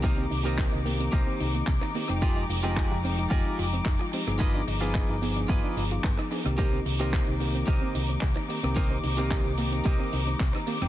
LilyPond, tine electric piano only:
\new Staff \with { instrumentName = "Tine electric piano" } { \time 4/4 \key c \minor \tempo 4 = 110 <ees bes c' g'>8. <ees bes c' g'>8. <ees bes c' g'>2 <ees bes c' g'>16 <f aes ees' g''>16~ | <f aes ees' g''>8. <f aes ees' g''>8. <f aes ees' g''>2 <f aes ees' g'>16 <f b ees' aes'>16~ | <f b ees' aes'>8. <f b ees' aes'>8. <f b ees' aes'>2 <f b ees' aes'>16 <ees bes c' g'>16~ | <ees bes c' g'>8. <ees bes c' g'>8. <ees bes c' g'>2 <ees bes c' g'>16 <ees bes c' g'>16~ |
<ees bes c' g'>8. <ees bes c' g'>8. <ees bes c' g'>2 <ees bes c' g'>16 <f aes ees' g''>16 | }